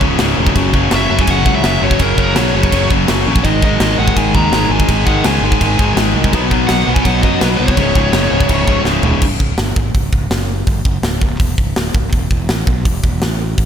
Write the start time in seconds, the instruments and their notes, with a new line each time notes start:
0.01 fingered electric bass C#1, distorted electric guitar C#2 G#2 C#3, kick
0.19 fingered electric bass C#1, distorted electric guitar C#2 G#2 C#3, snare, crash
0.38 fingered electric bass E1, distorted electric guitar C#2 G#2 C#3
0.47 kick
0.55 fingered electric bass F#1, distorted electric guitar F#2 C#3 F#3, kick, crash
0.74 distorted electric guitar F#2 C#3 F#3, kick
0.91 fingered electric bass F#1, distorted electric guitar F#2 C#3 F#3, snare, crash
0.95 lead electric guitar E5
1.09 fingered electric bass F#1, distorted electric guitar F#2 C#3 F#3
1.19 lead electric guitar G#5, kick
1.27 fingered electric bass F#1, distorted electric guitar F#2 C#3 F#3, lead electric guitar F#5, kick, crash
1.45 fingered electric bass C#2, distorted electric guitar F#2 C#3 F#3, kick
1.56 lead electric guitar E5
1.63 fingered electric bass F#1, distorted electric guitar F#2 C#3 F#3, snare, crash
1.81 fingered electric bass F#1, distorted electric guitar F#2 C#3 F#3, lead electric guitar C#5
1.91 kick
1.99 fingered electric bass F#1, distorted electric guitar F#2 C#3 F#3, lead electric guitar A#4, kick, crash
2.17 fingered electric bass F#1, distorted electric guitar F#2 C#3 F#3, kick
2.36 fingered electric bass B1, distorted electric guitar F#2 C#3 F#3, lead electric guitar C#5, snare, crash
2.54 fingered electric bass F#1, distorted electric guitar F#2 C#3 F#3
2.63 kick
2.71 fingered electric bass F#1, distorted electric guitar F#2 C#3 F#3, kick, crash
2.89 fingered electric bass F#1, distorted electric guitar F#2 C#3 F#3, kick
3.08 fingered electric bass F#1, distorted electric guitar F#2 C#3 F#3, snare, crash
3.26 fingered electric bass A#1, distorted electric guitar F#2 C#3 F#3
3.36 kick
3.44 fingered electric bass G#1, distorted electric guitar G#2 D#3 G#3, pipe organ G#3 D#4 A#4 C5, lead electric guitar D#5, kick, crash
3.62 distorted electric guitar G#2 D#3 G#3, lead electric guitar D#5, kick
3.80 fingered electric bass G#1, distorted electric guitar G#2 D#3 G#3, snare, crash
3.98 fingered electric bass G#1, distorted electric guitar G#2 D#3 G#3, lead electric guitar F#5
4.08 kick
4.16 fingered electric bass G#1, distorted electric guitar G#2 D#3 G#3, lead electric guitar G#5, kick, crash
4.34 fingered electric bass D#2, distorted electric guitar G#2 D#3 G#3, lead electric guitar A#5, kick
4.52 fingered electric bass G#1, distorted electric guitar G#2 D#3 G#3, snare, crash
4.69 fingered electric bass G#1, distorted electric guitar G#2 D#3 G#3, lead electric guitar G#5
4.80 kick
4.88 fingered electric bass G#1, distorted electric guitar G#2 D#3 G#3, kick, crash
5.06 fingered electric bass G#1, distorted electric guitar G#2 D#3 G#3, lead electric guitar F#5, kick
5.24 fingered electric bass C#2, distorted electric guitar G#2 D#3 G#3, lead electric guitar G#5, snare, crash
5.42 fingered electric bass G#1, distorted electric guitar G#2 D#3 G#3
5.52 kick
5.61 fingered electric bass G#1, distorted electric guitar G#2 D#3 G#3, kick, crash
5.79 fingered electric bass G#1, distorted electric guitar G#2 D#3 G#3, kick
5.96 fingered electric bass G#1, distorted electric guitar G#2 D#3 G#3, snare, crash
6.14 fingered electric bass C2, distorted electric guitar G#2 D#3 G#3
6.24 kick
6.33 fingered electric bass B1, distorted electric guitar B2 F#3 B3, pipe organ B3 F#4 C#5 D#5, kick, crash
6.51 distorted electric guitar B2 F#3 B3, kick
6.67 fingered electric bass B1, distorted electric guitar B2 F#3 B3, lead electric guitar F#5, snare, crash
6.87 fingered electric bass B1, distorted electric guitar B2 F#3 B3
6.94 lead electric guitar G#5, kick
7.02 fingered electric bass B1, distorted electric guitar B2 F#3, lead electric guitar F#5, kick, crash
7.06 distorted electric guitar B3
7.22 fingered electric bass F#2, distorted electric guitar B2 F#3 B3, lead electric guitar D#5, kick
7.41 fingered electric bass B1, distorted electric guitar B2 F#3 B3, lead electric guitar B4, snare, crash
7.57 fingered electric bass C2, distorted electric guitar B2 F#3 B3, lead electric guitar C#5
7.68 kick
7.77 fingered electric bass C#1, distorted electric guitar C#2 G#2 C#3, pipe organ C#4 G#4 E5, kick, crash
7.95 fingered electric bass C#1, distorted electric guitar C#2 G#2 C#3, kick
8.12 fingered electric bass F#1, distorted electric guitar C#2 G#2 C#3, snare, crash
8.32 fingered electric bass C#1, distorted electric guitar C#2 G#2 C#3
8.41 kick
8.49 fingered electric bass C#1, distorted electric guitar C#2 G#2 C#3, kick, crash
8.68 fingered electric bass C#1, distorted electric guitar C#2 G#2 C#3, kick
8.85 fingered electric bass C#1, distorted electric guitar C#2 G#2 C#3, snare
9.02 fingered electric bass E1, distorted electric guitar C#2 G#2 C#3, floor tom
9.22 fingered electric bass C#1, kick, crash
9.40 fingered electric bass C#1, kick
9.58 fingered electric bass G1, snare, open hi-hat
9.76 fingered electric bass G#1, kick
9.94 fingered electric bass C#1, kick, open hi-hat
10.13 fingered electric bass C#1, kick
10.30 fingered electric bass F#1, snare, open hi-hat
10.67 fingered electric bass G1, kick, open hi-hat
10.85 fingered electric bass F#1, kick
11.02 fingered electric bass C#1, snare, open hi-hat
11.22 fingered electric bass C#1, kick
11.40 fingered electric bass E1, kick, open hi-hat
11.58 fingered electric bass C#1, kick
11.76 fingered electric bass D1, snare, open hi-hat
11.94 fingered electric bass C#1, kick
12.13 fingered electric bass E1, kick, open hi-hat
12.30 fingered electric bass E1, kick
12.49 fingered electric bass A1, snare, open hi-hat
12.67 fingered electric bass B1, kick
12.85 fingered electric bass E1, kick, open hi-hat
13.04 fingered electric bass E1, kick
13.22 fingered electric bass A1, snare, open hi-hat
13.58 fingered electric bass A1, kick, open hi-hat